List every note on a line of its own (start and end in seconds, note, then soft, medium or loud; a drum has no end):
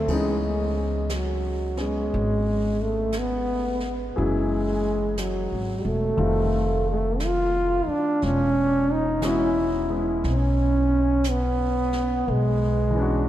0.00 0.15 A3 medium
0.00 0.10 E4 medium
0.08 2.08 C#2 medium
0.08 4.15 E3 soft
0.08 1.76 B3 soft
0.08 1.77 C#4 soft
0.08 4.14 G#4 soft
0.08 brush sweep soft
0.08 kick medium
0.08 ride soft
0.13 1.15 G#3 medium
0.13 4.17 D#4 soft
1.10 brush sweep soft
1.10 snare soft
1.10 hi-hat pedal soft
1.14 1.83 F#3 medium
1.77 4.15 B3 soft
1.77 4.15 C#4 soft
1.77 snare soft
1.81 2.83 G#3 medium
2.11 4.12 G#1 medium
2.11 brush sweep soft
2.81 3.20 A3 medium
3.12 brush sweep soft
3.12 snare soft
3.12 hi-hat pedal soft
3.18 3.99 B3 medium
3.80 snare soft
4.15 5.48 F#1 medium
4.15 6.19 E3 soft
4.15 6.19 F#3 soft
4.15 5.21 G#3 medium
4.15 6.19 C#4 soft
4.15 6.20 E4 soft
4.15 6.19 G#4 soft
4.15 brush sweep soft
5.18 5.87 F#3 medium
5.18 brush sweep soft
5.18 snare soft
5.18 hi-hat pedal medium
5.52 5.83 G#1 medium
5.85 6.16 E1 medium
5.85 6.86 A3 medium
6.16 7.82 F1 medium
6.16 8.20 D#3 soft
6.16 8.21 G3 soft
6.16 8.21 A3 soft
6.16 8.21 C4 soft
6.16 8.21 F4 soft
6.16 brush sweep soft
6.90 7.25 A3 medium
7.20 7.89 F4 medium
7.20 brush sweep soft
7.20 snare soft
7.20 hi-hat pedal soft
7.87 8.26 D4 medium
7.87 muted upright bass stroke soft
8.22 10.21 E1 medium
8.22 8.94 C#4 medium
8.22 brush sweep soft
8.22 snare soft
8.92 9.28 D#4 medium
9.21 12.27 E3 soft
9.21 9.88 G#3 soft
9.21 9.89 B3 soft
9.21 12.28 C#4 soft
9.21 brush sweep soft
9.21 snare soft
9.21 hi-hat pedal soft
9.26 10.08 E4 medium
9.26 12.29 F#4 medium
9.90 12.27 G#3 soft
9.90 12.28 B3 soft
9.90 12.29 E4 soft
10.24 12.23 B1 medium
10.24 brush sweep soft
10.24 snare soft
10.29 11.32 C#4 medium
11.24 brush sweep soft
11.24 snare soft
11.24 hi-hat pedal medium
11.30 12.33 B3 medium
11.93 snare soft
12.26 13.29 B1 medium
12.26 brush sweep soft
12.31 13.29 G#3 medium
12.90 13.29 E3 soft
12.90 13.29 B3 soft
12.96 13.29 C#4 soft
12.96 13.29 D4 soft
13.02 13.29 F#4 medium